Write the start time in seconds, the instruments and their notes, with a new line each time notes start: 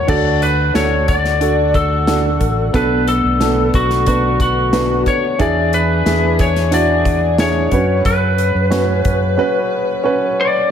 Already playing: grand piano C#4 F#4 A#4
0.07 fingered electric bass D2, string section D3 A3 F#4, grand piano D3 D4 F#4 A4, lead electric guitar D5, kick, crash
0.42 lead electric guitar B4, closed hi-hat
0.74 fingered electric bass D2, grand piano D4 F#4 A4, lead electric guitar C#5, snare, closed hi-hat
1.08 lead electric guitar D5, kick, closed hi-hat
1.25 snare, closed hi-hat
1.40 grand piano D4 F#4 A4, closed hi-hat
1.74 lead electric guitar A4, kick, closed hi-hat
2.07 grand piano D4 F#4 A4, snare, closed hi-hat
2.41 fingered electric bass A1, kick, closed hi-hat
2.73 fingered electric bass B1, grand piano B2 B3 D4 A4, string section B3, lead electric guitar B4, kick, closed hi-hat
3.08 lead electric guitar A4, closed hi-hat
3.24 fingered electric bass B1
3.40 grand piano B3 D4 A4, snare, closed hi-hat
3.74 fingered electric bass B1, lead electric guitar F#4, kick, closed hi-hat
3.90 snare, closed hi-hat
4.06 grand piano B3 D4 B4, lead electric guitar F#4, kick, closed hi-hat
4.40 lead electric guitar F#4, kick, closed hi-hat
4.72 grand piano B3 D4 B4, snare, closed hi-hat
5.06 lead electric guitar C#5, kick, closed hi-hat
5.39 fingered electric bass E2, string section E3 D4 G#4, grand piano E3 D4 E4 G#4, lead electric guitar D5, kick, closed hi-hat
5.73 lead electric guitar B4, closed hi-hat
6.05 fingered electric bass E2, grand piano D4 E4 G#4, snare, closed hi-hat
6.39 lead electric guitar C#5, kick, closed hi-hat
6.56 snare, closed hi-hat
6.71 grand piano D4 E4 F#4, lead electric guitar D5, closed hi-hat
7.05 kick, closed hi-hat
7.38 grand piano D4 E4 G#4, lead electric guitar C#5, snare, closed hi-hat
7.71 fingered electric bass F#2, string section C#3 F#3 B4, grand piano C#4 F#4 B4, kick, closed hi-hat
8.05 fingered electric bass F#2, lead electric guitar B4, kick, closed hi-hat
8.38 closed hi-hat
8.55 fingered electric bass F#2
8.70 grand piano C#4 F#4 B4, snare, closed hi-hat
9.05 fingered electric bass F#2, kick, closed hi-hat
9.37 grand piano C#4 F#4 B4
10.04 grand piano C#4 F#4 B4
10.41 lead electric guitar D5